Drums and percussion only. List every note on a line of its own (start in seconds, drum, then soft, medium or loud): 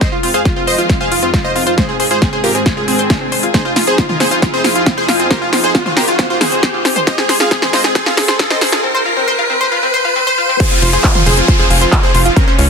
0.01 kick loud
0.01 snare medium
0.01 closed hi-hat medium
0.23 open hi-hat loud
0.34 closed hi-hat medium
0.45 kick loud
0.45 snare medium
0.45 closed hi-hat medium
0.67 open hi-hat medium
0.78 closed hi-hat medium
0.89 kick loud
0.89 snare medium
0.89 closed hi-hat medium
1.12 open hi-hat loud
1.23 closed hi-hat medium
1.34 kick loud
1.34 snare medium
1.34 closed hi-hat medium
1.56 open hi-hat loud
1.67 closed hi-hat medium
1.78 kick loud
1.78 snare medium
1.78 closed hi-hat medium
2.00 open hi-hat loud
2.11 closed hi-hat medium
2.22 kick loud
2.22 snare medium
2.22 closed hi-hat medium
2.44 open hi-hat medium
2.55 closed hi-hat medium
2.66 kick loud
2.66 snare medium
2.66 closed hi-hat medium
2.88 open hi-hat loud
2.99 closed hi-hat medium
3.10 kick loud
3.10 snare medium
3.10 closed hi-hat medium
3.32 open hi-hat medium
3.43 closed hi-hat medium
3.54 kick loud
3.54 snare medium
3.54 closed hi-hat medium
3.76 snare medium
3.76 open hi-hat loud
3.87 closed hi-hat medium
3.98 kick loud
3.98 snare medium
3.98 closed hi-hat medium
4.09 mid tom medium
4.20 snare medium
4.20 open hi-hat medium
4.31 closed hi-hat medium
4.42 kick loud
4.42 snare medium
4.42 closed hi-hat medium
4.64 snare medium
4.64 open hi-hat loud
4.75 closed hi-hat medium
4.86 kick loud
4.86 snare medium
4.86 closed hi-hat medium
5.08 snare medium
5.08 open hi-hat medium
5.20 closed hi-hat medium
5.31 kick loud
5.31 snare medium
5.31 closed hi-hat medium
5.53 snare medium
5.53 open hi-hat loud
5.64 closed hi-hat medium
5.75 kick loud
5.75 snare medium
5.75 closed hi-hat medium
5.86 mid tom medium
5.97 snare medium
5.97 open hi-hat medium
6.08 closed hi-hat medium
6.19 kick loud
6.19 snare medium
6.19 closed hi-hat medium
6.41 snare medium
6.41 open hi-hat loud
6.41 mid tom medium
6.52 closed hi-hat medium
6.63 kick loud
6.63 snare medium
6.63 closed hi-hat medium
6.85 snare medium
6.85 open hi-hat medium
6.96 closed hi-hat medium
6.96 mid tom medium
7.07 kick loud
7.07 snare medium
7.07 closed hi-hat medium
7.18 snare medium
7.29 snare medium
7.29 open hi-hat loud
7.40 snare medium
7.40 closed hi-hat medium
7.51 kick loud
7.51 snare medium
7.51 closed hi-hat medium
7.62 snare medium
7.62 mid tom medium
7.73 snare medium
7.73 open hi-hat medium
7.84 snare medium
7.84 closed hi-hat medium
7.95 kick loud
7.95 snare medium
7.95 closed hi-hat medium
8.06 snare medium
8.17 snare loud
8.17 open hi-hat loud
8.28 snare medium
8.28 closed hi-hat medium
8.39 kick loud
8.39 snare loud
8.39 closed hi-hat medium
8.50 snare medium
8.61 snare loud
8.61 open hi-hat medium
8.72 snare medium
8.72 closed hi-hat medium
10.60 kick loud
10.60 closed hi-hat medium
10.60 crash loud
10.82 open hi-hat loud
10.93 closed hi-hat medium
11.04 kick loud
11.04 clap loud
11.04 closed hi-hat medium
11.15 mid tom medium
11.26 open hi-hat medium
11.37 closed hi-hat medium
11.48 kick loud
11.48 closed hi-hat medium
11.70 open hi-hat loud
11.81 closed hi-hat medium
11.92 kick loud
11.92 clap loud
11.92 closed hi-hat medium
12.14 open hi-hat loud
12.26 closed hi-hat medium
12.37 kick loud
12.37 closed hi-hat medium
12.59 open hi-hat loud